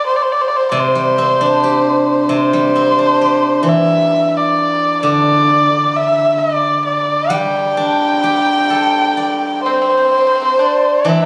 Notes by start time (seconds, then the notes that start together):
0.07 C5
0.16 D5
0.22 C5
0.32 D5
0.41 C5
0.48 D5
0.56 C5
0.71 C3 D5
0.80 C5
0.95 G3
1.18 C4
1.41 D4
1.64 G4
2.29 C3
2.35 C5
2.53 G3
2.76 C4
2.99 D4
3.21 G4
3.63 E3
3.68 E5
4.37 D5
5.03 D3 D5
5.96 E5
6.38 D5
6.85 D5
7.30 G3 G5
7.77 D4
8.24 G4
8.70 A4
9.17 D5
9.64 C4 C5
9.73 C4
9.82 C4
9.90 C4
9.97 C4
10.05 C4
10.12 C4
10.18 C4
10.27 C4
10.35 C4
10.42 C4
10.59 D4 D5
11.05 E3 D4 E5